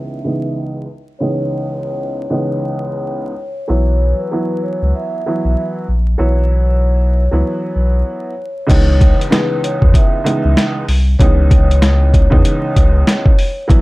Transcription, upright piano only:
0.00 0.19 C#2 medium
0.00 0.19 E3 medium
0.00 0.19 G#3 medium
0.00 0.20 B3 medium
0.00 0.20 D#4 medium
0.24 0.84 C#2 medium
0.24 0.84 E3 medium
0.24 0.84 G#3 medium
0.24 0.84 B3 medium
0.24 0.84 D#4 loud
1.20 2.22 C#2 medium
1.20 2.22 E3 medium
1.20 2.22 G#3 medium
1.20 2.23 B3 medium
1.20 2.23 D#4 loud
2.30 3.30 C#2 medium
2.30 3.31 E3 medium
2.30 3.31 G#3 medium
2.30 3.31 B3 medium
2.30 3.31 D#4 loud
3.68 4.27 E3 medium
3.68 4.27 F#3 medium
3.68 4.28 B3 medium
3.68 4.28 E4 loud
4.31 5.20 E3 medium
4.31 5.20 F#3 medium
4.31 5.20 B3 medium
4.31 5.20 E4 medium
5.26 5.85 E3 medium
5.26 5.85 F#3 medium
5.26 5.85 B3 medium
5.26 5.85 E4 medium
6.18 7.21 E3 medium
6.18 7.21 F#3 medium
6.18 7.21 B3 medium
6.18 7.22 E4 loud
7.31 8.31 E3 medium
7.31 8.31 F#3 medium
7.31 8.31 B3 medium
7.31 8.32 E4 medium
8.67 9.27 C#2 loud
8.67 9.27 E3 medium
8.67 9.27 G#3 medium
8.67 9.27 B3 medium
8.67 9.27 D#4 loud
9.30 10.19 C#2 medium
9.30 10.19 E3 medium
9.30 10.19 G#3 medium
9.30 10.20 B3 medium
9.30 10.20 D#4 loud
10.24 10.84 C#2 medium
10.24 10.84 E3 medium
10.24 10.84 G#3 medium
10.24 10.84 B3 medium
10.24 10.84 D#4 loud
11.20 12.22 C#2 loud
11.20 12.22 E3 medium
11.20 12.22 G#3 medium
11.20 12.23 B3 medium
11.20 12.23 D#4 loud
12.30 13.30 C#2 medium
12.30 13.31 E3 medium
12.30 13.31 G#3 medium
12.30 13.31 B3 medium
12.30 13.31 D#4 loud
13.68 13.81 E3 loud
13.68 13.81 F#3 medium
13.68 13.81 B3 medium
13.68 13.81 E4 loud

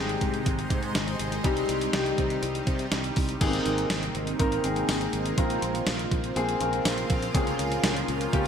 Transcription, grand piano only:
0.00 1.46 G#3 medium
0.00 1.44 C4 medium
0.00 1.45 D#4 medium
0.00 0.67 G4 medium
0.00 1.47 G#4 medium
1.44 1.79 G3 medium
1.44 1.79 C4 medium
1.44 1.79 D#4 medium
1.44 1.79 G4 medium
1.93 2.63 G3 medium
1.93 2.63 C4 medium
1.93 2.63 D#4 medium
1.93 2.63 G4 medium
3.40 4.10 A#3 medium
3.40 3.47 B3 medium
3.40 4.11 D#4 medium
3.40 4.11 G#4 medium
3.47 4.13 C4 medium
4.39 4.57 A#3 medium
4.39 4.57 C4 medium
4.39 4.57 D#4 medium
4.39 4.57 A#4 loud
4.63 5.16 A#3 medium
4.63 5.16 C4 medium
4.63 5.16 D#4 medium
4.63 5.17 G#4 medium
5.37 6.07 A#3 medium
5.37 6.07 C4 medium
5.37 6.08 F4 medium
5.37 6.08 A#4 medium
6.36 6.53 A#3 medium
6.36 6.54 C4 medium
6.36 6.54 F4 medium
6.36 6.54 G#4 loud
6.60 7.13 A#3 medium
6.60 7.13 C4 medium
6.60 7.13 F4 medium
6.60 7.13 A#4 medium
7.34 8.04 A#3 medium
7.34 8.04 C#4 medium
7.34 8.04 F4 medium
7.34 8.05 G#4 medium
8.32 8.48 A#3 medium
8.32 8.48 C#4 medium
8.32 8.48 F4 medium
8.32 8.48 G4 loud

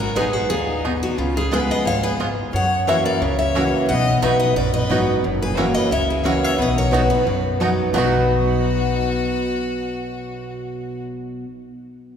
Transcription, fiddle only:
0.01 0.16 F#4 medium
0.17 0.35 D#4 medium
0.35 0.50 D#4 medium
0.51 0.98 D#4 medium
1.03 1.20 D#4 medium
1.19 1.35 C#4 medium
1.35 1.51 F4 medium
1.51 1.68 G#4 medium
1.69 1.84 B4 medium
1.85 2.02 C#5 medium
2.03 2.18 G#4 medium
2.53 2.85 C#5 medium
2.87 3.03 C#5 medium
3.05 3.20 A#4 medium
3.20 3.37 A#4 medium
3.38 3.85 C#5 medium
3.88 4.20 D#5 loud
4.23 4.39 B4 medium
4.40 4.55 B4 medium
4.57 4.73 B4 medium
4.75 5.13 B4 medium
5.42 5.60 G#4 medium
5.58 5.75 A#4 medium
5.76 5.91 B4 medium
5.91 6.08 C#5 medium
6.09 6.24 E4 medium
6.26 6.43 A#4 medium
6.41 6.58 C#5 medium
6.58 6.75 B4 medium
6.75 6.91 A#4 medium
6.93 7.09 F#4 medium
7.09 7.56 F#4 medium
7.94 11.03 F#4 medium

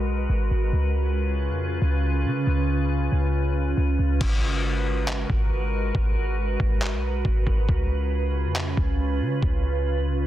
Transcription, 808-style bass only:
0.00 0.28 B1 medium
0.29 0.50 G#1 loud
0.51 0.72 G#1 loud
0.73 1.51 C#2 loud
1.49 1.80 F2 medium
1.82 2.27 C#2 loud
2.25 2.46 C#3 loud
2.47 3.10 C#2 loud
3.12 3.75 C#2 medium
3.77 3.98 C#2 loud
3.99 4.20 C#2 loud
4.21 5.26 G#1 loud
5.30 5.92 G#1 loud
5.95 6.57 G#1 loud
6.60 6.94 G#1 loud
6.92 7.23 B1 medium
7.25 7.46 G#1 loud
7.47 7.68 G#1 loud
7.69 8.46 C#2 loud
8.45 8.76 F2 loud
8.77 9.22 C#2 loud
9.21 9.41 C#3 loud
9.43 10.27 C#2 loud

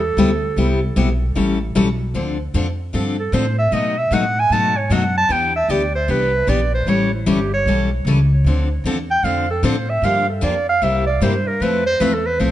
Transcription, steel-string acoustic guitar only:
0.18 0.29 C3 medium
0.18 0.29 G3 loud
0.18 0.29 B3 loud
0.18 0.29 E4 loud
0.18 0.30 G4 loud
0.57 0.79 C3 medium
0.57 0.79 G3 medium
0.57 0.79 B3 medium
0.57 0.79 E4 medium
0.57 0.79 G4 medium
0.96 1.08 C3 medium
0.96 1.08 G3 medium
0.96 1.08 B3 medium
0.96 1.08 E4 medium
0.96 1.08 G4 loud
1.35 1.57 E3 medium
1.35 1.57 G3 medium
1.35 1.58 C#4 medium
1.35 1.58 E4 medium
1.35 1.58 A4 medium
1.75 1.87 E3 medium
1.75 1.87 G3 medium
1.75 1.87 C#4 loud
1.75 1.87 E4 loud
1.75 1.87 A4 loud
2.15 2.36 D3 medium
2.15 2.36 F3 medium
2.15 2.37 C4 medium
2.15 2.37 D4 medium
2.15 2.37 A4 medium
2.54 2.66 D3 medium
2.54 2.66 F3 medium
2.54 2.66 C4 medium
2.54 2.66 D4 loud
2.54 2.66 A4 medium
2.93 3.15 D3 medium
2.93 3.15 F3 medium
2.93 3.15 C4 medium
2.93 3.16 D4 medium
2.93 3.16 A4 medium
3.33 3.44 D3 medium
3.33 3.44 F3 medium
3.33 3.45 C4 medium
3.33 3.45 D4 loud
3.33 3.45 A4 medium
3.72 3.94 B2 medium
3.72 3.94 F#3 medium
3.72 3.94 A3 medium
3.72 3.94 D#4 medium
3.72 3.94 F#4 medium
4.12 4.23 B2 medium
4.12 4.23 F#3 medium
4.12 4.24 A3 medium
4.12 4.24 D#4 loud
4.12 4.24 F#4 medium
4.52 4.73 B2 medium
4.52 4.73 F#3 medium
4.52 4.73 A3 medium
4.52 4.73 D#4 medium
4.52 4.74 F#4 medium
4.91 5.02 B2 medium
4.91 5.02 F#3 loud
4.91 5.03 A3 medium
4.91 5.03 D#4 loud
4.91 5.03 F#4 medium
5.29 5.51 E3 medium
5.29 5.52 B3 medium
5.29 5.52 D4 medium
5.29 5.52 G4 medium
5.70 5.81 E3 medium
5.70 5.81 B3 medium
5.70 5.81 D4 medium
5.70 5.81 G4 loud
6.08 6.30 E3 medium
6.08 6.30 B3 medium
6.08 6.31 D4 medium
6.08 6.31 G4 medium
6.47 6.59 E3 medium
6.47 6.59 B3 medium
6.47 6.60 D4 medium
6.47 6.60 G4 loud
6.87 7.09 E3 medium
6.87 7.09 G3 medium
6.87 7.09 C#4 medium
6.87 7.09 E4 medium
6.87 7.10 A4 medium
7.26 7.38 E3 medium
7.26 7.38 G3 medium
7.26 7.38 C#4 medium
7.26 7.39 E4 medium
7.26 7.39 A4 loud
7.67 7.88 E3 medium
7.67 7.89 G3 medium
7.67 7.89 C#4 medium
7.67 7.89 E4 medium
7.67 7.89 A4 medium
8.07 8.18 E3 medium
8.07 8.18 G3 medium
8.07 8.18 C#4 medium
8.07 8.18 E4 medium
8.07 8.18 A4 medium
8.46 8.67 D3 medium
8.46 8.67 F3 medium
8.46 8.68 C4 medium
8.46 8.68 D4 medium
8.46 8.68 A4 medium
8.86 8.96 D3 medium
8.86 8.96 F3 medium
8.86 8.97 C4 medium
8.86 8.97 D4 medium
8.86 8.97 A4 medium
9.24 9.46 D3 medium
9.24 9.46 F3 medium
9.24 9.46 C4 medium
9.24 9.46 D4 medium
9.24 9.46 A4 medium
9.63 9.75 D3 medium
9.63 9.75 F3 medium
9.63 9.75 C4 medium
9.63 9.75 D4 loud
9.63 9.75 A4 loud
10.03 10.25 D3 medium
10.03 10.25 F3 medium
10.03 10.25 A#3 medium
10.03 10.25 D4 medium
10.03 10.25 G4 medium
10.41 10.53 D3 medium
10.41 10.53 F3 medium
10.41 10.53 A#3 loud
10.41 10.54 D4 loud
10.41 10.54 G4 loud
10.82 11.03 C3 medium
10.82 11.03 G3 medium
10.82 11.04 A#3 medium
10.82 11.04 E4 medium
10.82 11.04 G4 medium
11.21 11.33 C3 loud
11.21 11.33 G3 medium
11.21 11.33 A#3 loud
11.21 11.33 E4 loud
11.21 11.33 G4 loud
11.62 11.83 F3 medium
11.62 11.83 A3 medium
11.62 11.83 C4 medium
11.62 11.83 E4 medium
11.62 11.83 A4 medium
12.00 12.11 F3 medium
12.00 12.12 A3 medium
12.00 12.12 C4 loud
12.00 12.12 E4 loud
12.00 12.12 A4 loud
12.39 12.51 F3 medium
12.39 12.51 A3 medium
12.39 12.51 C4 medium
12.39 12.51 E4 medium
12.39 12.51 A4 medium

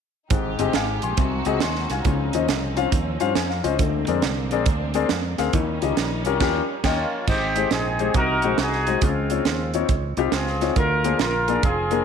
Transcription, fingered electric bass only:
0.31 0.55 G#1 medium
0.59 0.72 G1 medium
0.74 0.98 G#1 medium
1.03 1.16 A#1 medium
1.17 1.42 C2 medium
1.46 1.59 C#2 medium
1.62 1.86 D#2 medium
1.90 2.03 C2 medium
2.05 2.29 C#2 medium
2.33 2.46 D#2 medium
2.49 2.86 C2 medium
2.92 3.16 D#2 medium
3.21 3.34 G2 medium
3.36 3.60 F2 medium
3.64 3.77 C#2 medium
3.79 4.03 D2 loud
4.08 4.21 F2 medium
4.23 4.52 C2 medium
4.52 4.65 A#1 medium
4.66 5.03 D2 medium
5.10 5.34 F2 medium
5.39 5.51 D2 medium
5.53 5.78 D#2 loud
5.83 5.95 C#2 medium
5.97 6.26 A#1 medium
6.26 6.38 C2 medium
6.40 6.60 D#2 medium
6.84 7.03 D#2 medium
7.27 7.64 G#1 medium
7.71 8.08 A#1 medium
8.15 8.43 C2 medium
8.43 8.56 A#1 medium
8.58 8.95 C2 medium
9.02 9.39 C#2 medium
9.45 9.82 D#2 medium
9.89 10.13 C#2 medium
10.17 10.30 C2 medium
10.32 10.69 C#2 medium
10.76 11.13 D2 loud
11.19 11.56 A#1 loud
11.63 12.00 F1 medium

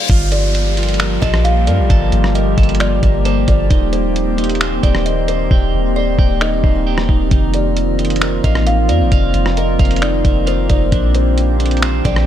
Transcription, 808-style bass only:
0.10 1.18 G1 loud
1.22 1.69 A#1 loud
1.67 1.80 G2 loud
1.79 1.89 A#1 loud
1.90 2.12 G1 loud
2.13 2.56 G1 loud
2.58 3.01 G1 loud
3.03 3.46 G1 loud
3.48 3.70 G1 loud
3.71 4.79 D#1 loud
4.83 5.48 D#1 loud
5.51 5.73 D#1 loud
5.74 6.17 D#1 loud
6.19 6.62 D#1 loud
6.64 7.07 D#1 loud
7.09 7.31 D#1 loud
7.31 8.40 F1 loud
8.44 8.91 A1 loud
8.89 9.02 F2 loud
9.01 9.11 A1 loud
9.12 9.33 F1 loud
9.34 9.78 F1 loud
9.80 10.23 F1 loud
10.25 10.68 F1 loud
10.70 10.91 F1 loud
10.92 12.01 A#1 loud
12.05 12.26 A#1 loud

